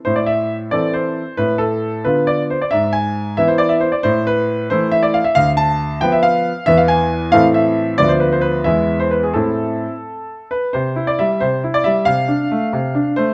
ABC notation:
X:1
M:6/8
L:1/16
Q:3/8=90
K:Am
V:1 name="Grand piano"
c d e4 d2 c4 | B2 A4 B2 d2 c d | e2 ^g4 e c d e c d | c2 B4 c2 e d f e |
f2 a4 g e f4 | e f ^g4 f2 e4 | d c B c B2 e3 c B ^G | A8- A2 B2 |
[K:C] c3 d e2 c3 d e2 | f8- f2 c2 |]
V:2 name="Grand piano"
A,,6 [E,CA]6 | A,,6 [D,B,F]6 | ^G,,6 [E,B,E]6 | A,,6 [E,A,E]6 |
D,,6 [F,B,B]6 | [E,,E,B,B]6 [A,,E,CA]6 | [D,,F,B,F]6 [E,,^G,B,E]6 | [A,,CE]6 z6 |
[K:C] C,2 E2 G,2 C,2 E2 G,2 | C,2 D2 A,2 C,2 D2 A,2 |]